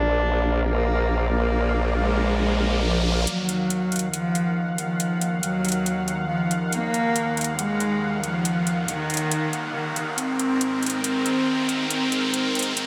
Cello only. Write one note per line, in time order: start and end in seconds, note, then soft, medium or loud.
0.00 0.60 D4 loud
0.68 1.25 A#3 loud
1.33 1.90 A#3 medium
1.98 2.76 G#3 loud
2.84 3.07 F3 medium
3.27 4.06 F#3 loud
4.13 4.70 F3 loud
4.78 5.35 F3 medium
5.43 6.21 F#3 loud
6.29 6.52 F3 medium
6.72 7.51 A#3 loud
7.59 8.16 G#3 loud
8.24 8.80 F3 medium
8.88 9.67 D#3 loud
9.75 9.97 D#3 medium
10.18 10.96 C4 loud
11.04 11.83 C4 loud
11.90 12.69 C4 loud
12.77 12.87 C4 loud